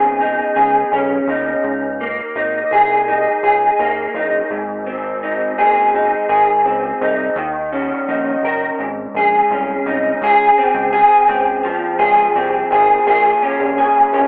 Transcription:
Already playing: analog synth bass G#1, clean electric guitar B2 C#4 D#4 G#4
0.20 clean electric guitar D#4
0.56 analog synth bass C#2, clean electric guitar G#4
0.92 analog synth bass B1, clean electric guitar C#4
1.27 analog synth bass D#2, clean electric guitar D#4
1.64 analog synth bass C#2
2.01 clean electric guitar A#3
2.36 analog synth bass G#1, clean electric guitar D#4
2.71 analog synth bass C2, clean electric guitar G#4
3.08 clean electric guitar D#4
3.43 analog synth bass C#2, clean electric guitar G#4
3.79 analog synth bass D#2, clean electric guitar A#3
4.14 analog synth bass F#1, clean electric guitar D#4
4.51 analog synth bass G#1, clean electric guitar G#2
4.87 clean electric guitar C4
5.23 clean electric guitar D#4
5.58 analog synth bass F#1, clean electric guitar G#4
5.95 clean electric guitar D#4
6.29 analog synth bass G#1, clean electric guitar G#4
6.65 analog synth bass C#2, clean electric guitar C4
7.01 analog synth bass C2, clean electric guitar D#4
7.36 analog synth bass D#2, clean electric guitar D#3
7.72 clean electric guitar C#4
8.07 analog synth bass A#1, clean electric guitar D#4
8.43 analog synth bass F#1, clean electric guitar A#4
8.79 analog synth bass G#1, clean electric guitar G#2
9.14 analog synth bass A#1, clean electric guitar G#4
9.50 analog synth bass C2, clean electric guitar C#4
9.86 analog synth bass C2, clean electric guitar D#4
10.22 analog synth bass C#2, clean electric guitar G#4
10.58 clean electric guitar C4
10.74 analog synth bass C#2
10.93 clean electric guitar G#4
11.28 analog synth bass C#2, clean electric guitar C4
11.65 clean electric guitar F3
11.99 analog synth bass C#2, clean electric guitar G#4
12.36 analog synth bass C2, clean electric guitar C4
12.71 analog synth bass G#1, clean electric guitar G#4
13.06 analog synth bass A#1, clean electric guitar A#2 G#4
13.43 clean electric guitar C#4
13.60 analog synth bass A#1
13.78 clean electric guitar G#4
14.13 analog synth bass A#1, clean electric guitar C#4

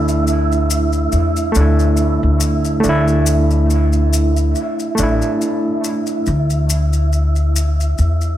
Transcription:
Already playing: upright bass D2, reed electric piano A3 D4 E4, synth texture E4
0.08 maracas
0.27 maracas
0.52 maracas
0.70 maracas
0.93 maracas
1.12 upright bass E2, maracas
1.36 maracas
1.52 reed electric piano A3, maracas
1.56 upright bass D2, reed electric piano D4
1.61 reed electric piano E4
1.79 maracas
1.97 maracas
2.23 upright bass D2
2.40 maracas
2.65 maracas
2.80 reed electric piano A3, maracas
2.84 upright bass D2, reed electric piano D4
2.89 reed electric piano E4
3.08 maracas
3.26 maracas
3.51 maracas
3.70 maracas
3.93 maracas
4.13 maracas
4.37 maracas
4.55 maracas
4.79 maracas
4.95 upright bass A1, reed electric piano A3, maracas
4.99 reed electric piano D4 E4
5.22 maracas
5.41 maracas
5.84 maracas
6.06 maracas
6.26 upright bass D2, maracas
6.50 maracas
6.70 maracas
6.93 maracas
7.13 maracas
7.36 maracas
7.56 maracas
7.80 maracas
7.98 upright bass E2, maracas
8.21 maracas

